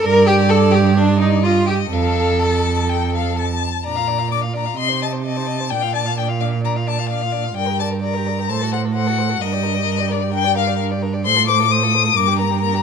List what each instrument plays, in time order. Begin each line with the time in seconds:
0.04 cello G2, violin A#4 D5, viola A#4
0.26 violin G4, viola G4
0.49 violin A4, viola A4
0.71 violin G4, viola G4
0.96 violin D4 D5, viola D4
1.19 violin D#4, viola D#4
1.43 violin F4 D#5, viola F4
1.66 violin G4, viola G4
1.90 cello F2, violin A4 F5, viola A4
2.42 violin A5
2.89 violin G5
3.15 violin F5
3.39 violin A5
3.84 cello A#2, viola D4, violin D5 A#5
3.96 viola F4, violin F5
4.08 viola D4, violin D5
4.18 viola F4, violin F5
4.30 viola D4, violin D5 D6
4.42 violin F5
4.46 viola F4
4.53 viola D4, violin D5 A#5
4.65 viola F4, violin F5
4.77 cello C3, viola C4, violin D#5 C6
4.88 viola D#4, violin C5
5.02 viola C4, violin D#5 A5
5.12 viola D#4, violin C5
5.25 viola C4, violin D#5 A5
5.36 viola D#4, violin C5
5.47 viola C4, violin D#5
5.60 viola D#4, violin C5
5.70 cello A#2, viola D4, violin D5 G5
5.82 viola F4, violin F5
5.93 viola D4, violin D5 A5
6.06 viola F4, violin F5
6.18 viola D4, violin D5 G5
6.28 viola F4, violin F5
6.40 viola D4, violin D5 F5
6.51 viola F4, violin F5
6.63 viola D4, violin D5 A#5
6.76 viola F4, violin F5
6.87 viola D4, violin D5 A5
6.98 viola F4, violin F5
7.10 viola D4, violin D5 F5
7.21 viola F4, violin F5
7.32 viola D4, violin D5
7.44 viola F4, violin F5
7.56 cello G2, viola A#4, violin D5 G5
7.67 viola G4, violin A#4
7.79 viola A#4, violin D5 A5
7.90 viola G4, violin A#4
8.01 violin D5 A#5
8.06 viola A#4
8.14 viola G4, violin A#4
8.26 viola A#4, violin D5
8.38 viola G4, violin A#4
8.49 cello A2, viola A4, violin C5 A5
8.61 viola F#4, violin A4
8.72 viola A4, violin C5 F#5
8.85 viola F#4, violin A4
8.95 viola A4, violin C5 F#5
9.06 viola F#4, violin A4
9.18 viola A4, violin C5
9.29 viola F#4, violin A4
9.40 cello G2, viola D4, violin A#4 D#5
9.52 viola G4, violin D5
9.63 viola D4, violin A#4
9.74 viola G4, violin D5
9.85 viola D4, violin A#4
9.98 viola G4, violin D5
10.08 viola D4, violin A#4 D5
10.20 viola G4, violin D5
10.32 viola D4, violin A#4 G5
10.44 viola G4, violin D5
10.55 viola D4, violin A#4 F5
10.66 viola G4, violin D5
10.78 viola D4, violin A#4
10.91 viola G4, violin D5
11.02 viola D4, violin A#4
11.13 viola G4, violin D5
11.25 cello A2, viola A4, violin C5 C6
11.36 viola F4, violin A4
11.48 viola A4, violin C5 D6
11.59 viola F4, violin A4
11.71 viola A4, violin C5 D#6
11.83 viola F4, violin A4
11.94 viola A4, violin C5
12.04 viola F4, violin A4
12.15 cello G2, viola A#3, violin A#4 D6
12.27 viola D4, violin G4
12.38 viola A#3, violin A#4 A#5
12.50 viola D4, violin G4
12.61 viola A#3, violin A#4 A#5
12.73 viola D4, violin G4